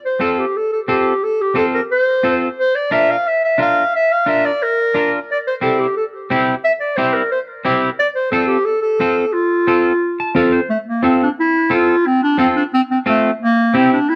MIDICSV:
0, 0, Header, 1, 3, 480
1, 0, Start_track
1, 0, Key_signature, -1, "major"
1, 0, Tempo, 338219
1, 1741, Time_signature, 4, 2, 24, 8
1, 20086, End_track
2, 0, Start_track
2, 0, Title_t, "Clarinet"
2, 0, Program_c, 0, 71
2, 76, Note_on_c, 0, 72, 86
2, 292, Note_off_c, 0, 72, 0
2, 303, Note_on_c, 0, 69, 77
2, 547, Note_on_c, 0, 67, 76
2, 568, Note_off_c, 0, 69, 0
2, 804, Note_on_c, 0, 69, 89
2, 825, Note_off_c, 0, 67, 0
2, 1017, Note_off_c, 0, 69, 0
2, 1026, Note_on_c, 0, 69, 76
2, 1133, Note_off_c, 0, 69, 0
2, 1265, Note_on_c, 0, 67, 81
2, 1752, Note_on_c, 0, 69, 90
2, 1773, Note_off_c, 0, 67, 0
2, 2006, Note_on_c, 0, 67, 82
2, 2027, Note_off_c, 0, 69, 0
2, 2224, Note_off_c, 0, 67, 0
2, 2233, Note_on_c, 0, 69, 84
2, 2339, Note_off_c, 0, 69, 0
2, 2470, Note_on_c, 0, 70, 81
2, 2576, Note_off_c, 0, 70, 0
2, 2708, Note_on_c, 0, 72, 96
2, 3375, Note_off_c, 0, 72, 0
2, 3677, Note_on_c, 0, 72, 100
2, 3904, Note_on_c, 0, 74, 95
2, 3925, Note_off_c, 0, 72, 0
2, 4148, Note_on_c, 0, 76, 105
2, 4169, Note_off_c, 0, 74, 0
2, 4405, Note_on_c, 0, 77, 95
2, 4427, Note_off_c, 0, 76, 0
2, 4641, Note_on_c, 0, 76, 108
2, 4662, Note_off_c, 0, 77, 0
2, 4872, Note_off_c, 0, 76, 0
2, 4888, Note_on_c, 0, 76, 95
2, 5099, Note_off_c, 0, 76, 0
2, 5131, Note_on_c, 0, 77, 106
2, 5565, Note_off_c, 0, 77, 0
2, 5605, Note_on_c, 0, 76, 106
2, 5843, Note_on_c, 0, 77, 94
2, 5864, Note_off_c, 0, 76, 0
2, 6081, Note_on_c, 0, 76, 98
2, 6103, Note_off_c, 0, 77, 0
2, 6313, Note_on_c, 0, 74, 89
2, 6335, Note_off_c, 0, 76, 0
2, 6559, Note_on_c, 0, 70, 99
2, 6580, Note_off_c, 0, 74, 0
2, 7271, Note_off_c, 0, 70, 0
2, 7537, Note_on_c, 0, 74, 97
2, 7637, Note_off_c, 0, 74, 0
2, 7763, Note_on_c, 0, 72, 79
2, 7867, Note_off_c, 0, 72, 0
2, 7992, Note_on_c, 0, 69, 79
2, 8219, Note_on_c, 0, 67, 77
2, 8241, Note_off_c, 0, 69, 0
2, 8461, Note_off_c, 0, 67, 0
2, 8468, Note_on_c, 0, 69, 81
2, 8575, Note_off_c, 0, 69, 0
2, 9423, Note_on_c, 0, 76, 105
2, 9531, Note_off_c, 0, 76, 0
2, 9652, Note_on_c, 0, 74, 90
2, 9879, Note_on_c, 0, 72, 97
2, 9900, Note_off_c, 0, 74, 0
2, 10129, Note_on_c, 0, 70, 83
2, 10150, Note_off_c, 0, 72, 0
2, 10373, Note_off_c, 0, 70, 0
2, 10382, Note_on_c, 0, 72, 81
2, 10490, Note_off_c, 0, 72, 0
2, 11341, Note_on_c, 0, 74, 113
2, 11450, Note_off_c, 0, 74, 0
2, 11570, Note_on_c, 0, 72, 94
2, 11789, Note_off_c, 0, 72, 0
2, 11797, Note_on_c, 0, 69, 92
2, 12015, Note_off_c, 0, 69, 0
2, 12024, Note_on_c, 0, 67, 89
2, 12270, Note_on_c, 0, 69, 99
2, 12291, Note_off_c, 0, 67, 0
2, 12501, Note_off_c, 0, 69, 0
2, 12510, Note_on_c, 0, 69, 94
2, 13239, Note_on_c, 0, 65, 84
2, 13260, Note_off_c, 0, 69, 0
2, 14693, Note_off_c, 0, 65, 0
2, 15176, Note_on_c, 0, 57, 89
2, 15287, Note_off_c, 0, 57, 0
2, 15435, Note_on_c, 0, 58, 76
2, 15655, Note_off_c, 0, 58, 0
2, 15673, Note_on_c, 0, 60, 84
2, 15893, Note_off_c, 0, 60, 0
2, 15937, Note_on_c, 0, 62, 82
2, 16038, Note_off_c, 0, 62, 0
2, 16174, Note_on_c, 0, 64, 102
2, 16644, Note_on_c, 0, 65, 99
2, 16666, Note_off_c, 0, 64, 0
2, 17117, Note_on_c, 0, 60, 96
2, 17138, Note_off_c, 0, 65, 0
2, 17346, Note_off_c, 0, 60, 0
2, 17354, Note_on_c, 0, 62, 89
2, 17573, Note_off_c, 0, 62, 0
2, 17592, Note_on_c, 0, 60, 91
2, 17699, Note_off_c, 0, 60, 0
2, 17831, Note_on_c, 0, 62, 83
2, 17938, Note_off_c, 0, 62, 0
2, 18073, Note_on_c, 0, 60, 101
2, 18179, Note_off_c, 0, 60, 0
2, 18319, Note_on_c, 0, 60, 86
2, 18424, Note_off_c, 0, 60, 0
2, 18559, Note_on_c, 0, 57, 98
2, 18887, Note_off_c, 0, 57, 0
2, 19051, Note_on_c, 0, 58, 105
2, 19484, Note_off_c, 0, 58, 0
2, 19531, Note_on_c, 0, 60, 96
2, 19741, Note_off_c, 0, 60, 0
2, 19772, Note_on_c, 0, 62, 101
2, 20000, Note_on_c, 0, 64, 116
2, 20021, Note_off_c, 0, 62, 0
2, 20086, Note_off_c, 0, 64, 0
2, 20086, End_track
3, 0, Start_track
3, 0, Title_t, "Clean electric guitar"
3, 0, Program_c, 1, 27
3, 281, Note_on_c, 1, 60, 64
3, 290, Note_on_c, 1, 65, 53
3, 296, Note_on_c, 1, 69, 78
3, 629, Note_off_c, 1, 60, 0
3, 630, Note_off_c, 1, 65, 0
3, 635, Note_off_c, 1, 69, 0
3, 1250, Note_on_c, 1, 60, 71
3, 1261, Note_on_c, 1, 65, 55
3, 1262, Note_on_c, 1, 69, 79
3, 1594, Note_off_c, 1, 60, 0
3, 1595, Note_off_c, 1, 65, 0
3, 1598, Note_off_c, 1, 69, 0
3, 2197, Note_on_c, 1, 60, 66
3, 2205, Note_on_c, 1, 65, 58
3, 2211, Note_on_c, 1, 69, 77
3, 2548, Note_off_c, 1, 60, 0
3, 2548, Note_off_c, 1, 65, 0
3, 2553, Note_off_c, 1, 69, 0
3, 3168, Note_on_c, 1, 60, 68
3, 3174, Note_on_c, 1, 65, 74
3, 3187, Note_on_c, 1, 69, 70
3, 3511, Note_off_c, 1, 60, 0
3, 3516, Note_off_c, 1, 65, 0
3, 3518, Note_off_c, 1, 69, 0
3, 4131, Note_on_c, 1, 62, 72
3, 4138, Note_on_c, 1, 65, 58
3, 4145, Note_on_c, 1, 70, 72
3, 4473, Note_off_c, 1, 62, 0
3, 4478, Note_off_c, 1, 65, 0
3, 4479, Note_off_c, 1, 70, 0
3, 5080, Note_on_c, 1, 62, 73
3, 5091, Note_on_c, 1, 65, 63
3, 5100, Note_on_c, 1, 70, 65
3, 5427, Note_off_c, 1, 62, 0
3, 5434, Note_off_c, 1, 65, 0
3, 5435, Note_off_c, 1, 70, 0
3, 6047, Note_on_c, 1, 62, 71
3, 6054, Note_on_c, 1, 65, 66
3, 6065, Note_on_c, 1, 70, 65
3, 6391, Note_off_c, 1, 62, 0
3, 6396, Note_off_c, 1, 65, 0
3, 6396, Note_off_c, 1, 70, 0
3, 7016, Note_on_c, 1, 62, 74
3, 7024, Note_on_c, 1, 65, 65
3, 7034, Note_on_c, 1, 70, 66
3, 7356, Note_off_c, 1, 62, 0
3, 7360, Note_off_c, 1, 65, 0
3, 7362, Note_off_c, 1, 70, 0
3, 7966, Note_on_c, 1, 60, 67
3, 7976, Note_on_c, 1, 64, 63
3, 7983, Note_on_c, 1, 67, 75
3, 8311, Note_off_c, 1, 60, 0
3, 8316, Note_off_c, 1, 64, 0
3, 8319, Note_off_c, 1, 67, 0
3, 8945, Note_on_c, 1, 60, 89
3, 8958, Note_on_c, 1, 67, 87
3, 8959, Note_on_c, 1, 64, 73
3, 9280, Note_off_c, 1, 60, 0
3, 9286, Note_off_c, 1, 64, 0
3, 9288, Note_off_c, 1, 67, 0
3, 9898, Note_on_c, 1, 60, 70
3, 9906, Note_on_c, 1, 64, 64
3, 9913, Note_on_c, 1, 67, 77
3, 10237, Note_off_c, 1, 60, 0
3, 10241, Note_off_c, 1, 64, 0
3, 10245, Note_off_c, 1, 67, 0
3, 10851, Note_on_c, 1, 60, 85
3, 10860, Note_on_c, 1, 64, 78
3, 10868, Note_on_c, 1, 67, 95
3, 11194, Note_off_c, 1, 60, 0
3, 11198, Note_off_c, 1, 64, 0
3, 11202, Note_off_c, 1, 67, 0
3, 11805, Note_on_c, 1, 60, 76
3, 11818, Note_on_c, 1, 65, 55
3, 11821, Note_on_c, 1, 69, 81
3, 12153, Note_off_c, 1, 60, 0
3, 12154, Note_off_c, 1, 65, 0
3, 12159, Note_off_c, 1, 69, 0
3, 12774, Note_on_c, 1, 60, 71
3, 12780, Note_on_c, 1, 65, 70
3, 12789, Note_on_c, 1, 69, 75
3, 13116, Note_off_c, 1, 60, 0
3, 13120, Note_off_c, 1, 65, 0
3, 13121, Note_off_c, 1, 69, 0
3, 13727, Note_on_c, 1, 60, 71
3, 13737, Note_on_c, 1, 69, 77
3, 13739, Note_on_c, 1, 65, 53
3, 14074, Note_off_c, 1, 60, 0
3, 14075, Note_off_c, 1, 65, 0
3, 14078, Note_off_c, 1, 69, 0
3, 14474, Note_on_c, 1, 81, 65
3, 14684, Note_on_c, 1, 60, 80
3, 14693, Note_on_c, 1, 65, 73
3, 14694, Note_off_c, 1, 81, 0
3, 14702, Note_on_c, 1, 69, 97
3, 14703, Note_on_c, 1, 77, 65
3, 14922, Note_off_c, 1, 77, 0
3, 14931, Note_on_c, 1, 72, 63
3, 15034, Note_off_c, 1, 60, 0
3, 15035, Note_off_c, 1, 65, 0
3, 15041, Note_off_c, 1, 69, 0
3, 15162, Note_off_c, 1, 72, 0
3, 15647, Note_on_c, 1, 60, 74
3, 15652, Note_on_c, 1, 65, 64
3, 15666, Note_on_c, 1, 69, 66
3, 15993, Note_off_c, 1, 60, 0
3, 15996, Note_off_c, 1, 65, 0
3, 15999, Note_off_c, 1, 69, 0
3, 16603, Note_on_c, 1, 60, 75
3, 16615, Note_on_c, 1, 65, 58
3, 16615, Note_on_c, 1, 69, 78
3, 16952, Note_off_c, 1, 60, 0
3, 16953, Note_off_c, 1, 65, 0
3, 16957, Note_off_c, 1, 69, 0
3, 17570, Note_on_c, 1, 60, 79
3, 17577, Note_on_c, 1, 65, 56
3, 17580, Note_on_c, 1, 69, 77
3, 17914, Note_off_c, 1, 60, 0
3, 17914, Note_off_c, 1, 65, 0
3, 17918, Note_off_c, 1, 69, 0
3, 18533, Note_on_c, 1, 60, 75
3, 18539, Note_on_c, 1, 65, 72
3, 18546, Note_on_c, 1, 69, 81
3, 18874, Note_off_c, 1, 60, 0
3, 18877, Note_off_c, 1, 65, 0
3, 18881, Note_off_c, 1, 69, 0
3, 19495, Note_on_c, 1, 60, 74
3, 19507, Note_on_c, 1, 64, 60
3, 19507, Note_on_c, 1, 67, 81
3, 19834, Note_off_c, 1, 60, 0
3, 19839, Note_off_c, 1, 64, 0
3, 19841, Note_off_c, 1, 67, 0
3, 20086, End_track
0, 0, End_of_file